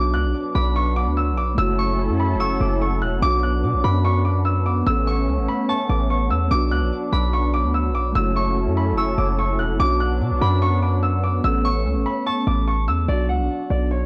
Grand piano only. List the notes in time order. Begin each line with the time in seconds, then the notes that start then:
0.14 F#6
0.55 D6
0.76 C#6
0.96 D6
1.17 E6
1.37 D6
1.58 E6
1.79 C#6
2.20 B5
2.40 C#6
2.61 D6
2.82 C#6
3.02 F#6
3.22 D6
3.43 F#6
3.84 D6
4.05 C#6
4.25 D6
4.45 E6
4.66 D6
4.87 E6
5.07 C#6
5.48 B5
5.69 C#6
5.90 D6
6.10 C#6
6.30 E6
6.51 D6
6.71 F#6
7.13 D6
7.33 C#6
7.54 D6
7.74 E6
7.95 D6
8.15 E6
8.36 C#6
8.77 B5
8.97 C#6
9.18 D6
9.39 C#6
9.59 F#6
9.80 D6
10.00 F#6
10.41 D6
10.62 C#6
10.82 D6
11.03 E6
11.24 D6
11.44 E6
11.65 C#6
12.06 B5
12.26 C#6
12.47 D6
12.68 C#6
12.88 E6
13.08 D5
13.29 F#5
13.70 D5
13.91 C#5